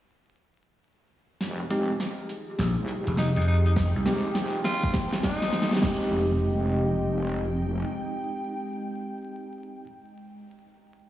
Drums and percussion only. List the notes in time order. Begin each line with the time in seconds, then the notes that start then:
1.41 snare, closed hi-hat
1.60 cross-stick
1.70 closed hi-hat
2.00 snare, closed hi-hat
2.29 closed hi-hat
2.59 snare, closed hi-hat
2.88 closed hi-hat
3.07 closed hi-hat
3.17 snare, closed hi-hat
3.36 closed hi-hat
3.42 closed hi-hat
3.66 closed hi-hat
3.76 kick, snare, closed hi-hat
4.06 snare, closed hi-hat
4.35 snare, closed hi-hat
4.64 snare, closed hi-hat
4.83 kick
4.94 kick, snare, closed hi-hat
5.13 snare
5.23 kick, snare, closed hi-hat
5.42 snare, closed hi-hat
5.53 snare, closed hi-hat
5.62 snare
5.71 snare, closed hi-hat
5.73 snare
5.77 snare, closed hi-hat
5.79 snare
5.82 kick, snare, crash